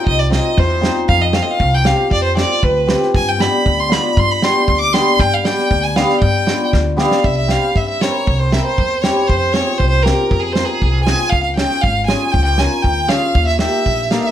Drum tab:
SD |--o---o-|--o---o-|--o---oo|--o---o-|
BD |o---o---|o---o---|o---o---|o---o---|

SD |--o---o-|--oo--oo|--o-o-oo|--o---o-|
BD |o---o---|o---o---|o---o---|o---o---|

SD |--o---o-|--o---o-|--o---o-|--oo--o-|
BD |o---o---|o---o---|o---o---|o---o---|

SD |--o---o-|--o---o-|
BD |o---o---|o---o---|